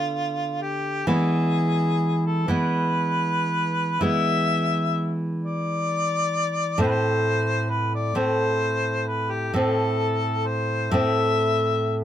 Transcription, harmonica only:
0.00 0.63 F4 medium
0.62 1.08 G4 medium
1.07 2.25 G#4 medium
2.26 2.50 A4 medium
2.48 4.04 B4 medium
4.03 5.16 E5 medium
5.44 6.78 D5 medium
6.80 6.87 C5 medium
6.86 6.92 B4 medium
6.91 7.71 C5 medium
7.69 7.93 B4 medium
7.95 8.17 D5 medium
8.16 9.08 C5 medium
9.07 9.32 B4 medium
9.31 9.55 G4 medium
9.54 10.48 A4 medium
10.47 10.94 C5 medium
10.92 12.03 E5 medium

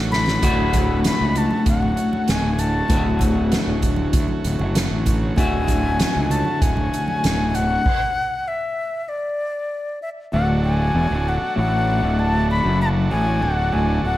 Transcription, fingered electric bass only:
0.00 0.36 A1 medium
0.43 1.08 D1 loud
1.21 1.47 C#2 medium
1.67 1.93 D1 medium
2.29 2.81 D1 medium
2.90 3.55 D1 medium
3.67 4.07 D1 medium
4.14 4.27 D2 medium
4.45 4.58 D1 medium
4.60 4.87 F#1 loud
4.91 5.30 A1 loud
5.38 6.03 D1 medium
6.16 6.42 C#2 loud
6.62 6.88 D1 medium
7.25 7.76 D1 medium
10.34 10.92 D1 medium
10.94 11.09 E1 medium
11.11 11.40 D1 medium
11.42 muted fingered electric bass stroke soft
11.57 12.01 A1 medium
12.03 12.61 D1 loud
12.65 13.09 F#1 medium
13.12 13.41 A1 medium
13.43 13.72 D1 medium
13.74 14.03 D1 medium
14.04 14.18 D1 medium

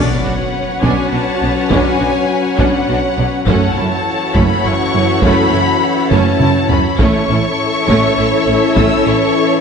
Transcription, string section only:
0.00 3.42 C#4 medium
0.00 3.42 F#4 medium
0.00 3.42 C#5 medium
0.00 3.42 F#5 medium
3.46 6.97 E4 medium
3.46 6.96 F#4 medium
3.46 6.96 C#5 medium
3.46 6.95 F#5 medium
6.98 9.61 E4 medium
6.98 9.61 A4 medium
6.98 9.61 C#5 medium
6.98 9.61 E5 medium

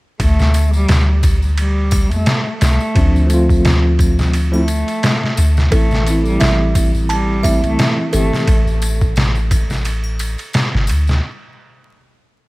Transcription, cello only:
0.21 0.69 A3 medium
0.75 1.05 G3 medium
1.59 2.06 G3 medium
2.13 2.58 A3 medium
2.62 3.25 A3 medium
4.54 5.60 A3 medium
5.74 6.21 A3 medium
6.27 6.57 G3 medium
7.11 7.58 G3 medium
7.65 8.09 A3 medium
8.14 8.48 A3 loud

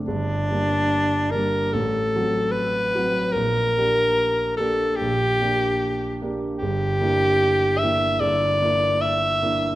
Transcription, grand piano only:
0.08 0.48 G1 medium
0.50 1.28 G3 soft
0.50 1.29 A#3 soft
0.50 1.29 D4 medium
1.34 1.70 G3 medium
1.34 1.70 A#3 soft
1.34 1.70 D4 medium
1.74 2.12 A1 medium
2.16 2.91 F#3 medium
2.16 2.91 C4 medium
2.16 2.91 F#4 medium
2.95 3.31 F#3 medium
2.95 3.31 C4 medium
2.95 3.31 F#4 medium
3.36 3.75 A#1 medium
3.77 4.54 A#3 medium
3.77 4.54 D4 medium
3.77 4.54 G4 medium
4.59 4.95 A#3 medium
4.59 4.95 D4 medium
4.59 4.95 G4 medium
5.01 5.39 A#1 medium
5.41 6.17 A#3 medium
5.41 6.17 D4 medium
5.41 6.17 G4 medium
6.22 6.56 A#3 medium
6.22 6.57 D4 medium
6.22 6.57 G4 medium
6.62 6.99 G1 medium
7.01 7.76 A#3 medium
7.01 7.76 D4 medium
7.01 7.76 E4 medium
7.83 8.17 A#3 medium
7.83 8.17 D4 medium
7.83 8.17 E4 medium
8.21 8.59 G1 medium
8.62 9.37 A#3 medium
8.62 9.37 D4 medium
8.62 9.38 E4 medium
9.42 9.75 A#3 medium
9.42 9.75 D4 medium
9.42 9.75 E4 medium

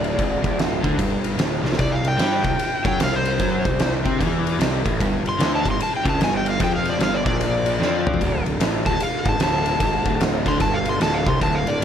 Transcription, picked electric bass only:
0.00 0.15 D1 medium
0.18 0.42 G#1 medium
0.44 0.82 D1 medium
0.83 0.98 D2 medium
0.99 1.37 G1 medium
1.38 1.63 D1 medium
1.63 1.78 C2 medium
1.79 2.03 C2 medium
2.04 2.18 C2 medium
2.18 2.43 G2 medium
2.44 2.57 C2 medium
2.58 muted picked electric bass stroke soft
2.85 2.99 F#2 medium
3.00 3.37 C2 medium
3.39 3.63 F#2 medium
3.65 4.03 C2 medium
4.05 4.19 C3 medium
4.20 4.57 E2 medium
4.59 4.83 C2 medium
4.86 4.99 A1 loud
5.01 5.23 G1 medium
5.24 5.38 G1 medium
5.40 5.64 D2 loud
5.65 5.79 G1 medium
5.80 muted picked electric bass stroke soft
6.05 6.19 C#2 medium
6.20 6.57 G1 medium
6.60 6.98 F2 medium
6.99 7.23 G1 medium
7.26 7.77 A#1 medium
7.79 8.17 F2 medium
8.20 8.44 D1 medium
8.45 8.58 D1 medium
8.59 8.83 A1 loud
8.86 8.98 D1 medium
8.99 muted picked electric bass stroke soft
9.25 9.38 G#1 medium
9.38 9.77 D1 medium
9.80 10.04 G#1 medium
10.06 10.44 D1 medium
10.46 10.60 D2 medium
10.60 10.98 G1 medium
11.00 11.25 D1 loud
11.26 11.41 C2 medium
11.41 11.65 D1 medium
11.67 11.81 D1 medium

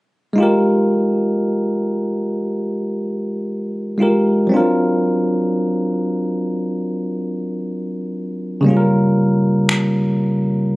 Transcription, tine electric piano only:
0.33 3.93 G#3 medium
0.33 3.95 D#4 medium
0.38 3.96 F4 medium
0.38 3.97 G4 medium
0.43 3.98 A#4 medium
3.98 4.50 G#3 medium
3.98 4.51 D#4 soft
3.98 4.51 F4 soft
3.98 4.52 G4 soft
4.03 4.53 A#4 medium
4.47 8.59 F#3 medium
4.47 8.60 C4 medium
4.52 8.61 D4 medium
4.52 8.62 F4 medium
4.57 8.64 A#4 medium
8.61 10.76 C#3 medium
8.61 10.76 G3 medium
8.61 10.76 A#3 medium
8.66 10.76 C#4 medium
8.66 10.76 F4 medium
8.66 8.74 G#4 medium
8.77 10.76 A#4 medium

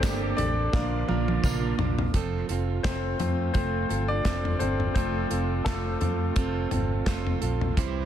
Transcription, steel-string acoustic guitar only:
0.03 0.38 G3 medium
0.03 0.38 A#3 medium
0.03 0.39 D4 loud
0.03 0.38 G4 loud
0.03 0.37 A4 medium
0.38 0.73 D4 soft
0.38 0.74 G4 medium
0.38 0.73 A4 medium
0.73 1.08 A#3 medium
0.73 1.09 D4 medium
0.73 1.08 F4 medium
0.73 1.07 A#4 medium
1.08 1.43 A#3 soft
1.08 1.44 D4 medium
1.08 1.44 F4 medium
1.08 1.44 A#4 medium
1.44 1.79 A#2 medium
1.44 1.79 F3 medium
1.44 1.79 A#3 medium
1.44 1.80 D4 medium
1.44 1.78 F4 loud
1.44 1.77 A#4 medium
1.78 2.14 A#3 soft
1.78 2.14 D4 medium
1.78 2.14 F4 medium
1.78 2.14 A#4 medium
2.14 2.49 F3 medium
2.14 2.49 A3 medium
2.14 2.50 C4 medium
2.14 2.49 F4 medium
2.14 2.48 A4 medium
2.49 2.84 C4 soft
2.49 2.85 F4 soft
2.49 2.84 A4 soft
2.84 3.20 A3 medium
2.84 3.20 C4 medium
2.84 3.19 F4 medium
2.84 3.18 A4 medium
3.19 3.54 C4 soft
3.19 3.54 F4 soft
3.19 3.55 A4 soft
3.54 3.90 F3 medium
3.54 3.90 A3 medium
3.54 3.90 C4 medium
3.54 3.90 F4 medium
3.54 3.88 A4 medium
3.89 4.25 C4 soft
3.89 4.26 F4 medium
3.89 4.25 A4 medium
4.25 4.60 A3 medium
4.25 4.61 C4 medium
4.25 4.60 F4 medium
4.25 4.58 A4 medium
4.60 4.95 C4 soft
4.60 4.95 F4 soft
4.60 4.95 A4 medium
4.95 5.30 F3 medium
4.95 5.31 A3 medium
4.95 5.31 C4 medium
4.95 5.31 F4 medium
4.95 5.29 A4 medium
5.30 5.65 C4 soft
5.30 5.66 F4 soft
5.30 5.66 A4 medium
5.65 6.01 A3 medium
5.65 6.01 C4 medium
5.65 6.01 F4 medium
5.65 5.99 A4 medium
6.00 6.36 C4 soft
6.00 6.36 F4 medium
6.00 6.36 A4 medium
6.36 6.71 F3 medium
6.36 6.72 A3 medium
6.36 6.72 C4 medium
6.36 6.71 F4 medium
6.36 6.70 A4 medium
6.71 7.06 C4 medium
6.71 7.07 F4 soft
6.71 7.07 A4 medium
7.06 7.42 A3 medium
7.06 7.42 C4 medium
7.06 7.42 F4 medium
7.06 7.40 A4 medium
7.41 7.77 C4 soft
7.41 7.78 F4 soft
7.41 7.77 A4 medium
7.77 8.05 C3 medium
7.77 8.05 E3 medium
7.77 8.05 G3 medium
7.77 8.05 C4 medium
7.77 8.05 E4 medium
7.77 8.05 C5 medium

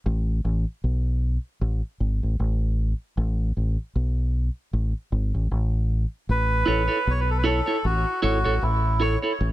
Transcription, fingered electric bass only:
0.06 0.40 A1 loud
0.45 0.64 A1 medium
0.84 1.37 B1 medium
1.61 1.81 A1 medium
2.00 2.20 G#1 medium
2.23 2.37 A1 medium
2.39 2.93 A1 medium
3.17 3.51 A1 loud
3.57 3.76 A1 medium
3.96 4.48 B1 medium
4.73 4.92 A1 medium
5.12 5.31 G#1 medium
5.35 5.49 A1 loud
5.51 6.04 A1 medium
6.29 6.63 A1 medium
6.68 6.87 A1 loud
7.07 7.60 B1 medium
7.85 8.04 A1 loud
8.24 8.43 G#1 medium
8.46 8.60 A1 medium
8.62 9.16 A1 medium
9.41 9.52 A1 loud

